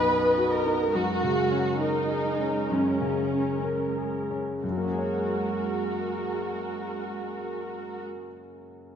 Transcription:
Already playing: grand piano B1 F#2 D#4 F#4 B4, viola section B3 D#5, violin section B4
0.10 grand piano B4
0.38 grand piano F#4
0.52 violin section A#4
0.66 grand piano D#4
0.94 grand piano F#2, viola section G#3 A#4, violin section F#4
1.23 grand piano C#3
1.51 grand piano C#4
1.81 violin section D#4, grand piano A#4
2.10 grand piano G#4
2.40 grand piano C#4
2.70 grand piano F#2, violin section C#4
3.01 grand piano C#3
3.32 grand piano C#4
3.64 grand piano A#4
3.97 grand piano G#4
4.31 grand piano C#4
4.63 grand piano F#2, viola section G#3 A#4, violin section F#4
4.70 grand piano F#3
4.77 grand piano A#3
4.85 grand piano C#4
4.92 grand piano G#4
4.99 grand piano C#5

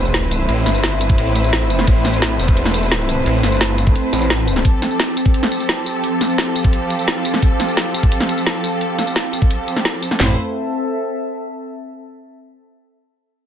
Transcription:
Already playing: detuned saw bass E1, string section A3 E4 B4 C5, ambient pad C4 A4 E5 A5, impact
0.05 tambourine
0.14 snare, closed hi-hat
0.31 closed hi-hat, tambourine
0.49 detuned saw bass A1, closed hi-hat
0.66 detuned saw bass G1, snare, closed hi-hat, tambourine
0.75 tambourine
0.84 snare, closed hi-hat
1.01 closed hi-hat, tambourine
1.09 kick
1.18 detuned saw bass A1, closed hi-hat
1.36 closed hi-hat, tambourine
1.44 tambourine
1.53 snare, closed hi-hat
1.70 closed hi-hat, tambourine
1.79 snare
1.87 detuned saw bass A1, kick, closed hi-hat
2.05 snare, closed hi-hat, tambourine
2.13 tambourine
2.22 snare, closed hi-hat
2.39 detuned saw bass E1, closed hi-hat, tambourine
2.48 kick
2.57 closed hi-hat
2.66 snare
2.74 closed hi-hat, tambourine
2.83 tambourine
2.92 snare, closed hi-hat
3.09 closed hi-hat, tambourine
3.26 detuned saw bass A1, closed hi-hat
3.43 detuned saw bass G1, snare, closed hi-hat, tambourine
3.52 tambourine
3.61 snare, closed hi-hat
3.78 closed hi-hat, tambourine
3.87 kick
3.96 closed hi-hat
4.13 detuned saw bass A1, closed hi-hat, tambourine
4.22 tambourine
4.30 snare, closed hi-hat
4.48 closed hi-hat, tambourine
4.56 snare
4.65 string section F3 C4 G4 A4, kick, closed hi-hat
4.82 snare, closed hi-hat, tambourine
4.91 tambourine
5.00 snare, closed hi-hat
5.17 closed hi-hat, tambourine
5.26 kick
5.34 closed hi-hat
5.43 snare
5.52 closed hi-hat, tambourine
5.56 ambient pad F5
5.60 tambourine
5.69 snare, closed hi-hat
5.86 closed hi-hat, tambourine
6.04 closed hi-hat
6.21 snare, closed hi-hat, tambourine
6.30 tambourine
6.38 snare, closed hi-hat
6.56 closed hi-hat, tambourine
6.64 kick
6.73 closed hi-hat
6.90 closed hi-hat, tambourine
6.99 tambourine
7.08 snare, closed hi-hat
7.25 closed hi-hat, tambourine
7.34 snare
7.42 kick, closed hi-hat
7.60 snare, closed hi-hat, tambourine
7.69 tambourine
7.77 snare, closed hi-hat
7.95 closed hi-hat, tambourine
8.03 kick
8.12 closed hi-hat
8.21 snare
8.29 closed hi-hat, tambourine
8.38 tambourine
8.47 snare, closed hi-hat
8.64 closed hi-hat, tambourine
8.81 closed hi-hat
8.99 snare, closed hi-hat, tambourine
9.07 tambourine
9.16 snare, closed hi-hat
9.33 closed hi-hat, tambourine
9.42 kick
9.51 closed hi-hat
9.68 closed hi-hat, tambourine
9.77 snare, tambourine
9.85 snare, closed hi-hat
10.03 closed hi-hat, tambourine
10.11 snare
10.20 detuned saw bass A1, string section A3 E4 B4 C5, ambient pad C4, snare, floor tom
10.25 ambient pad A4
10.30 ambient pad E5
10.36 ambient pad A5

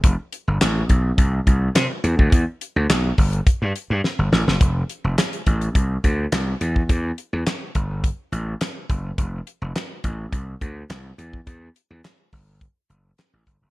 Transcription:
0.04 slap bass F1, kick, closed hi-hat
0.33 closed hi-hat
0.48 slap bass G1
0.61 slap bass A1, snare, clap, closed hi-hat
0.89 slap bass B1, kick, closed hi-hat
1.18 slap bass C2, kick, closed hi-hat
1.47 slap bass C2, kick, closed hi-hat
1.75 slap bass C3, snare, clap, closed hi-hat
2.04 slap bass E2, closed hi-hat
2.19 slap bass D2, kick
2.32 slap bass E2, kick, closed hi-hat
2.61 closed hi-hat
2.76 slap bass D2
2.89 slap bass B1, snare, clap, closed hi-hat
3.18 slap bass G1, kick, open hi-hat
3.33 closed hi-hat
3.47 kick, closed hi-hat
3.62 slap bass G2
3.76 closed hi-hat
3.90 slap bass G2
4.04 snare
4.19 slap bass G1
4.32 slap bass A1, snare
4.47 slap bass F#1, snare
4.61 slap bass F1, kick, closed hi-hat
4.89 closed hi-hat
5.04 slap bass F1
5.18 snare, clap, closed hi-hat
5.33 closed hi-hat
5.46 slap bass A1, kick, closed hi-hat
5.61 closed hi-hat
5.75 slap bass C2, kick, closed hi-hat
6.04 slap bass D2, kick, closed hi-hat
6.32 slap bass C2, snare, clap, closed hi-hat
6.61 slap bass E2, closed hi-hat
6.76 kick
6.89 slap bass E2, kick, closed hi-hat
7.18 closed hi-hat
7.33 slap bass E2
7.47 snare, clap, closed hi-hat
7.75 slap bass G1, kick, closed hi-hat
8.04 kick, closed hi-hat
8.32 slap bass A1, closed hi-hat
8.61 snare, clap, closed hi-hat
8.90 slap bass F#1, kick, closed hi-hat
9.18 slap bass F1, kick, closed hi-hat
9.47 closed hi-hat
9.62 slap bass F1
9.76 snare, clap, closed hi-hat
10.04 slap bass A1, kick, closed hi-hat
10.32 slap bass C2, kick, closed hi-hat
10.61 slap bass D2, kick, closed hi-hat
10.90 slap bass C2, snare, clap, closed hi-hat
11.18 slap bass E2, closed hi-hat
11.33 kick
11.47 slap bass E2, kick, closed hi-hat
11.76 closed hi-hat
11.90 slap bass E2
12.05 snare, clap, closed hi-hat
12.33 slap bass G1, kick, open hi-hat
12.61 kick, closed hi-hat
12.90 slap bass F#1, closed hi-hat
13.18 snare, clap, closed hi-hat
13.33 slap bass A1
13.47 slap bass G1, kick, closed hi-hat
13.62 slap bass F#1

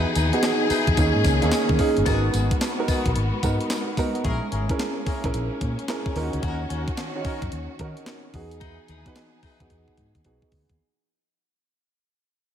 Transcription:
Already playing: string section E3 D#4 G#4, grand piano B3 D#4 F#4 G#4
0.15 fingered electric bass D#2, horn section D#4 E4 G#4 B4, closed hi-hat, tambourine
0.33 grand piano B3 D#4 F#4 G#4, closed hi-hat
0.43 grand piano B3 D#4 F#4 G#4, snare, clap, closed hi-hat, tambourine
0.70 horn section D#4 E4 G#4 B4, muted fingered electric bass stroke, open hi-hat, tambourine
0.87 fingered electric bass E2, kick, closed hi-hat
0.97 fingered electric bass D#2, string section D#3 C#4, grand piano A#3 C#4 D#4 G#4, kick, closed hi-hat, tambourine
1.15 fingered electric bass G#2
1.24 fingered electric bass C#2, kick, snare, closed hi-hat, tambourine
1.42 fingered electric bass D#2, grand piano A#3 C#4 D#4 G#4, closed hi-hat
1.51 snare, clap, closed hi-hat, tambourine
1.69 fingered electric bass D#3, kick
1.79 grand piano A#3 C#4 D#4 G#4, kick, open hi-hat
1.97 fingered electric bass G1, closed hi-hat
2.06 fingered electric bass G#1, string section G#3 B3 F#4, grand piano A#3 D#4 F#4 A#4, horn section B3 D#4 F#4 G#4, kick, closed hi-hat, tambourine
2.13 grand piano B3
2.33 fingered electric bass G#1, horn section B3 D#4 F#4 G#4, closed hi-hat, tambourine
2.51 kick, closed hi-hat
2.61 snare, clap, closed hi-hat, tambourine
2.79 grand piano B3 D#4 F#4 A#4
2.88 horn section B3 D#4 F#4 G#4, muted fingered electric bass stroke, kick, open hi-hat, tambourine
3.06 fingered electric bass B1, kick, closed hi-hat
3.16 fingered electric bass G#1, closed hi-hat
3.43 fingered electric bass G#2, grand piano B3 D#4 F#4 A#4, kick, closed hi-hat, tambourine
3.61 closed hi-hat
3.70 snare, clap, closed hi-hat, tambourine
3.97 grand piano B3 D#4 F#4 A#4, kick, open hi-hat, tambourine
4.15 closed hi-hat
4.24 fingered electric bass A#1, string section A#3 C#4, horn section C#4 E4 G#4 A#4, kick, closed hi-hat
4.52 fingered electric bass G#1, horn section C#4 E4 G#4 A#4, closed hi-hat
4.69 grand piano C#4 E4 G#4 A#4, kick, closed hi-hat
4.79 snare, clap, closed hi-hat
5.06 horn section C#4 E4 G#4 A#4, muted fingered electric bass stroke, kick, open hi-hat
5.24 fingered electric bass A#1, grand piano C#4 E4 G#4 A#4, kick, closed hi-hat
5.34 fingered electric bass A#1, closed hi-hat
5.61 fingered electric bass A#2, kick, closed hi-hat
5.79 closed hi-hat
5.88 grand piano C#4 E4 G#4 A#4, snare, clap, closed hi-hat
6.06 kick
6.16 fingered electric bass D#2, string section D#3 F#4, grand piano C#4 D#4 F4 A#4, open hi-hat
6.23 grand piano F#4
6.33 fingered electric bass D2, closed hi-hat
6.43 fingered electric bass D#2, horn section C#4 D#4 F#4 A#4, kick, closed hi-hat
6.70 fingered electric bass D#2, horn section C#4 D#4 F#4 A#4, closed hi-hat
6.88 kick, closed hi-hat
6.97 snare, clap, closed hi-hat
7.15 grand piano C#4 D#4 F#4 C#5
7.25 horn section C#4 D#4 F#4 A#4, muted fingered electric bass stroke, kick, open hi-hat
7.42 fingered electric bass F#2, kick, closed hi-hat
7.52 fingered electric bass D#2, closed hi-hat
7.79 fingered electric bass D#3, grand piano C#4 D#4 F#4 A#4, kick, closed hi-hat
7.97 closed hi-hat
8.06 snare, clap, closed hi-hat
8.34 fingered electric bass E2, string section E3 D#4 G#4, grand piano B3 D#4 F#4 G#4, kick, open hi-hat
8.51 closed hi-hat
8.61 horn section D#4 E4 G#4 B4, kick, closed hi-hat
8.88 fingered electric bass D#2, horn section D#4 E4 G#4 B4, closed hi-hat
9.06 grand piano B3 D#4 F#4 B4, kick, closed hi-hat
9.16 snare, clap, closed hi-hat
9.42 horn section D#4 E4 G#4 B4, muted fingered electric bass stroke, kick, open hi-hat
9.60 fingered electric bass E2, grand piano B3 D#4 F#4 G#4, kick, closed hi-hat
9.70 fingered electric bass E2, kick, closed hi-hat
9.88 kick
9.97 fingered electric bass G#2, kick, closed hi-hat
10.15 fingered electric bass D#2, kick, closed hi-hat
10.24 fingered electric bass B1, grand piano B3 D#4 F#4 G#4, kick, closed hi-hat
10.42 kick
10.52 fingered electric bass D2, kick, open hi-hat
10.70 fingered electric bass D#2, kick, closed hi-hat

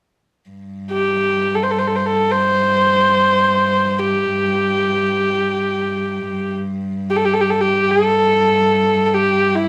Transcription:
0.49 cello G2
0.92 horsehead fiddle G4
1.55 horsehead fiddle A4
1.63 horsehead fiddle C5
1.70 horsehead fiddle A4
1.78 horsehead fiddle C5
1.87 horsehead fiddle A4
1.96 horsehead fiddle C5
2.05 horsehead fiddle A4
2.31 horsehead fiddle C5
3.99 horsehead fiddle G4
6.31 cello G2
7.10 horsehead fiddle G4
7.16 horsehead fiddle A4
7.25 horsehead fiddle G4
7.33 horsehead fiddle A4
7.41 horsehead fiddle G4
7.50 horsehead fiddle A4
7.60 horsehead fiddle G4
7.90 horsehead fiddle A4
9.06 horsehead fiddle A4
9.14 horsehead fiddle G4
9.55 horsehead fiddle E4

